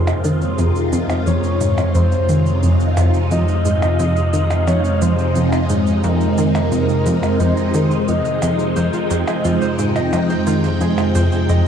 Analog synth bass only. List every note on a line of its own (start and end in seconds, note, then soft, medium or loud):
0.00 0.12 F2 loud
0.24 0.46 D#3 medium
0.58 0.71 F2 medium
0.92 1.06 F2 loud
1.27 1.40 F2 medium
1.61 1.82 G#2 medium
1.95 2.16 F2 loud
2.29 2.51 D#3 medium
2.63 2.76 F2 medium
2.97 3.10 F2 loud
3.31 3.44 F2 medium
3.65 3.87 G#2 medium
3.99 4.21 F2 loud
4.33 4.55 D#3 medium
4.67 4.80 F2 medium
5.02 5.15 F2 medium
5.35 5.49 F2 medium
5.70 5.91 G#2 medium
6.04 6.26 F2 loud
6.38 6.60 D#3 medium
6.72 6.85 F2 medium
7.06 7.19 F2 loud
7.40 7.53 F2 medium
7.74 7.96 D#3 medium
8.08 8.21 F2 medium
8.42 8.75 F2 medium
8.76 8.90 F2 medium
9.10 9.24 F2 loud
9.45 9.58 F2 medium
9.79 10.00 G#2 medium
10.13 10.35 F2 loud
10.47 10.69 D#3 medium
10.81 10.94 F2 medium
11.15 11.28 F2 loud
11.49 11.62 F2 medium